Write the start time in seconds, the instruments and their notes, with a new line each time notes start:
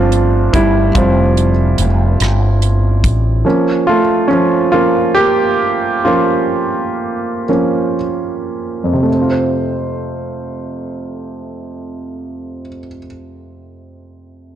Already playing: fretless electric bass G1, grand piano F3 G3 A3 C4 C#4 D4 F4
0.12 closed hi-hat
0.53 fretless electric bass G1, grand piano G3 E4, kick, closed hi-hat
0.95 fretless electric bass F1, grand piano F3 G3 C4 F4, kick, closed hi-hat
1.37 closed hi-hat
1.78 fretless electric bass F1, closed hi-hat
2.20 fretless electric bass G1, cross-stick, closed hi-hat
2.62 closed hi-hat
3.04 fretless electric bass A1, kick, closed hi-hat
3.45 grand piano F3 A#3 C#4
3.87 grand piano A3 F4
4.28 grand piano F3 C#4
4.72 grand piano F3 A#3 C#4 F4
5.15 grand piano A#3 G4
6.05 grand piano F3 A#3 C#4 F4
7.48 grand piano F3 A#3 C#4
8.84 grand piano F2
8.93 grand piano C3
9.03 grand piano A3
9.12 grand piano C4
9.21 grand piano F4
9.31 grand piano C5